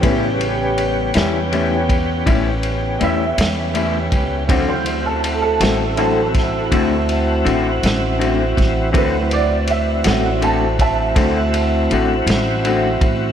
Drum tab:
RD |xxxxxxxxxxxx|xxxxxxxxxxxx|xxxxxxxxxxxx|
SD |---o-----o--|---o-o---o-o|---o-----o--|
BD |o----oo----o|o----oo----o|o----oo----o|